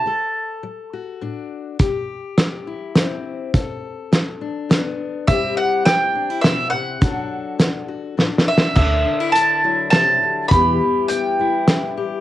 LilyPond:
<<
  \new Staff \with { instrumentName = "Mandolin" } { \time 3/4 \key d \mixolydian \tempo 4 = 103 a''2~ a''8 r8 | r2. | r2. | e''8 fis''8 g''4 e''8 fis''8~ |
fis''2 r8 e''8 | e''4 a''4 a''4 | b''4 g''4. r8 | }
  \new Staff \with { instrumentName = "Steel-string acoustic guitar" } { \time 3/4 \key d \mixolydian << { a'4. fis'8 d'4 | g'4. e'8 c'4 | a'4. d'8 b4 | <g c' e' g'>4. d'16 e'4~ e'16 |
<fis d' fis' a'>4. fis'8 d'4 | a'8 d'16 e'16 d'8 e'4. | <g b e' g'>8 e'8 b8 e'4 g'8 | } \\ { d4 fis4 a,4 | c4 g4 g,4 | b,4 g4 b,4 | c4 g4 b,8 c8 |
d4 fis4 a,4 | d4. fis8 c8 d8 | e4. g4. | } >> }
  \new Staff \with { instrumentName = "Upright bass" } { \clef bass \time 3/4 \key d \mixolydian r2. | r2. | r2. | r2. |
r2. | d,8 r2 r8 | e,8 r2 r8 | }
  \new DrumStaff \with { instrumentName = "Drums" } \drummode { \time 3/4 r4 r4 r4 | <hh bd>4 <hh sn>4 <hh sn>4 | <hh bd>4 <hh sn>4 <hh sn>4 | <hh bd>4 <hh sn>4 <hh sn>4 |
<hh bd>4 <hh sn>4 \tuplet 3/2 { sn8 sn8 sn8 } | <cymc bd>4 hh4 <hh sn>4 | <hh bd>4 hh4 <hh sn>4 | }
>>